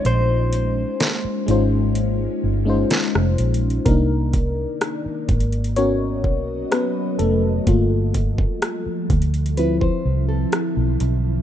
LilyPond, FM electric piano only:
\new Staff \with { instrumentName = "FM electric piano" } { \time 4/4 \key bes \major \tempo 4 = 63 << { <aes des' ees' f' c''>4 r8 <aes des' ees' f' c''>8. r8 <aes des' ees' f' c''>8. r8 | <bes bes'>2 <des' des''>4 <ces' ces''>8 <a a'>8~ | <a a'>8 r2. r8 | } \\ { r1 | <bes d' ees'>4. r8 <ces' ges' bes'>4. r8 | <a bes f'>4. r8 <f c' e'>4. r8 | } >> }